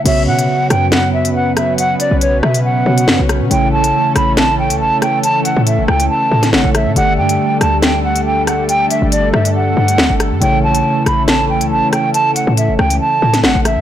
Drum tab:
CC |x---------------|----------------|----------------|----------------|
HH |x--x--x-x--x--x-|x-x-x--x---x--x-|x--x--x-x--x--x-|x-x-x--x---x--x-|
SD |------r-o-----r-|------r-----o-r-|------r-o-----r-|------r----oo-r-|

CC |----------------|----------------|----------------|----------------|
HH |x--x--x-x--x--x-|x-x-x--x---x--x-|x--x--x-x--x--x-|x-x-x--x---x--x-|
SD |------r-o-----r-|------r-----o-r-|------r-o-----r-|------r----oo-r-|